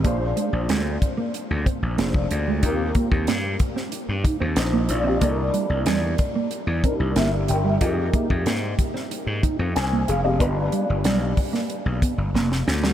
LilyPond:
<<
  \new Staff \with { instrumentName = "Grand piano" } { \time 4/4 \key c \minor \tempo 4 = 93 << { r1 | r2. <ees' c''>8 <f' d''>16 <g' ees''>16~ | <g' ees''>16 r2 r8. <g' e''>8 <bes' g''>16 <g' e''>16~ | <g' e''>16 r2 r8. <c'' aes''>8 <aes' f''>16 <g' ees''>16~ |
<g' ees''>16 r2. r8. | } \\ { <d' f' aes' c''>2. <d' f' aes' c''>4 | <c' f' g' bes'>1 | <d' e' g' a' bes'>2~ <d' e' g' a' bes'>8 <d' ees' e' g' bes'>4. | <ees' g' aes' bes'>2. r4 |
<d' f' g' b'>1 | } >> }
  \new Staff \with { instrumentName = "Clean electric guitar" } { \time 4/4 \key c \minor bes16 r16 aes16 r16 aes16 r8 bes16 r8 c'16 r16 bes16 r8 aes16 | ees'16 r16 bes16 r16 bes16 r8 c'16 r8 ees'16 c'16 r16 bes16 r16 c'16 | bes16 r16 g16 r16 g16 r8 bes16 r8 c'16 r16 bes16 r8 g16 | f'16 r16 bes16 r16 bes16 r8 c'16 r8 ees'16 c'16 r16 bes16 r16 c'16 |
b16 r16 g16 r16 g16 r8 bes16 r8 b16 r16 bes16 r8 g16 | }
  \new Staff \with { instrumentName = "Slap bass" } { \clef bass \time 4/4 \key c \minor bes,,8 r16 bes,,16 d,8 r8. d,16 r16 bes,,16 f,,8 d,8 | ees,8 r16 ees,16 g,8 r8. g,16 r16 ees,16 bes,,8 bes,,8 | c,8 r16 c,16 e,8 r8. e,16 r16 c,16 g,,8 g,,8 | f,8 r16 f,16 aes,8 r8. aes,16 r16 f,16 c,8 f,,8 |
g,,8 r16 g,,16 b,,8 r8. b,,16 r16 g,,16 f,,8 d,8 | }
  \new DrumStaff \with { instrumentName = "Drums" } \drummode { \time 4/4 <hh bd>8 hh8 <hh sn>8 <hh bd>8 hh8 <hh bd>8 <hh sn>16 bd16 hh8 | <hh bd>8 <hh bd>16 bd16 <hh sn>8 <hh bd>16 sn16 hh8 <hh bd>8 <hh sn>8 hh8 | <hh bd>8 hh8 <hh sn>8 <hh bd>8 hh8 <hh bd>8 <hh sn>8 hh8 | <hh bd>8 <hh bd>16 bd16 <hh sn>8 <hh bd>16 sn16 hh8 <hh bd>8 <hh sn>8 hh8 |
<hh bd>8 hh8 <hh sn>8 <hho bd>16 sn16 hh8 <hh bd>8 sn16 sn16 sn16 sn16 | }
>>